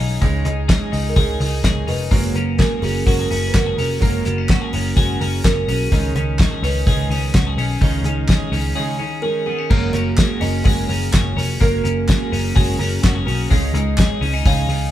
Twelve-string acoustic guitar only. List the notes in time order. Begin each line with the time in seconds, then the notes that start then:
0.00 C#4 D#4 G#4
0.22 C#3 G#3 C#4 D#4 G#4
0.45 C#4 D#4 G#4
0.69 G#3 C#4 D#4 G#4
0.93 C#4 D#4 G#4
1.17 C#3 G#3 C#4 D#4 G#4
1.41 C#4 D#4 G#4
1.64 G#3 C#4 D#4 G#4
1.88 C#4 D#4 G#4
2.12 F#3 G#3 C#4 F#4 A#4
2.35 C#4 F#4 A#4
2.59 G#3 C#4 F#4 A#4
2.83 C#4 F#4 A#4
3.06 F#3 G#3 C#4 F#4 A#4
3.31 C#4 F#4 A#4
3.53 G#3 C#4 F#4 A#4
3.77 C#4 F#4 A#4
3.99 F#3 G#3 C#4 F#4 A#4
4.25 C#4 F#4 A#4
4.49 G#3 C#4 F#4 A#4
4.73 C#4 F#4 A#4
4.97 F#3 G#3 C#4 F#4 A#4
5.21 C#4 F#4 A#4
5.44 G#3 C#4 F#4 A#4
5.69 C#4 F#4 A#4
5.91 C#3 G#3 C#4 D#4 G#4
6.14 C#4 D#4 G#4
6.39 G#3 C#4 D#4 G#4
6.63 C#4 D#4 G#4
6.86 C#3 G#3 C#4 D#4 G#4
7.11 C#4 D#4 G#4
7.34 G#3 C#4 D#4 G#4
7.58 C#4 D#4 G#4
7.82 C#3 G#3 C#4 D#4 G#4
8.05 C#4 D#4 G#4
8.29 G#3 C#4 D#4 G#4
8.52 C#4 D#4 G#4
8.75 C#3 G#3 C#4 D#4 G#4
8.99 C#4 D#4 G#4
9.23 G#3 C#4 D#4 G#4
9.46 C#4 D#4 G#4
9.70 F#3 G#3 C#4 F#4 A#4
9.93 C#4 F#4 A#4
10.18 G#3 C#4 F#4 A#4
10.41 C#4 F#4 A#4
10.65 F#3 G#3 C#4 F#4 A#4
10.88 C#4 F#4 A#4
11.12 G#3 C#4 F#4 A#4
11.37 C#4 F#4 A#4
11.60 F#3 G#3 C#4 F#4 A#4
11.84 C#4 F#4 A#4
12.07 G#3 C#4 F#4 A#4
12.32 C#4 F#4 A#4
12.55 F#3 G#3 C#4 F#4 A#4
12.79 C#4 F#4 A#4
13.02 G#3 C#4 F#4 A#4
13.25 C#4 F#4 A#4
13.50 C#3 G#3 C#4 D#4 G#4
13.73 C#4 D#4 G#4
13.97 G#3 C#4 D#4 G#4
14.22 C#4 D#4 G#4
14.46 C#3 G#3 C#4 D#4 G#4
14.69 C#4 D#4 G#4